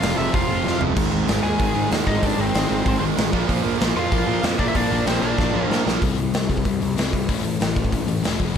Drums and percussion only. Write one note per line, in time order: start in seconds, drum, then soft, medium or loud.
0.02 snare loud
0.02 open hi-hat medium
0.34 kick loud
0.34 open hi-hat medium
0.67 snare medium
0.81 floor tom medium
0.96 kick loud
0.96 crash loud
1.28 snare loud
1.28 open hi-hat medium
1.60 kick medium
1.60 open hi-hat medium
1.91 snare loud
1.91 open hi-hat medium
2.07 kick medium
2.23 kick medium
2.23 open hi-hat medium
2.54 snare loud
2.54 open hi-hat medium
2.86 kick loud
2.86 open hi-hat medium
3.17 snare loud
3.17 open hi-hat medium
3.33 kick medium
3.49 kick loud
3.49 open hi-hat medium
3.80 snare loud
3.80 open hi-hat medium
4.12 kick loud
4.12 open hi-hat medium
4.43 snare loud
4.43 open hi-hat medium
4.59 kick medium
4.75 kick loud
4.75 open hi-hat medium
5.06 snare loud
5.06 open hi-hat medium
5.38 kick loud
5.38 snare medium
5.71 snare medium
5.88 snare medium
6.02 kick loud
6.02 open hi-hat medium
6.18 open hi-hat medium
6.34 snare loud
6.34 open hi-hat medium
6.50 kick medium
6.50 open hi-hat soft
6.58 kick medium
6.65 kick medium
6.65 open hi-hat medium
6.82 open hi-hat medium
6.98 snare loud
6.98 open hi-hat medium
7.13 kick medium
7.13 open hi-hat medium
7.29 kick medium
7.29 open hi-hat medium
7.44 open hi-hat medium
7.61 snare loud
7.61 open hi-hat medium
7.76 kick medium
7.76 open hi-hat medium
7.85 kick medium
7.92 kick medium
7.92 open hi-hat medium
8.08 open hi-hat medium
8.24 snare loud
8.24 open hi-hat medium
8.40 kick medium
8.40 open hi-hat medium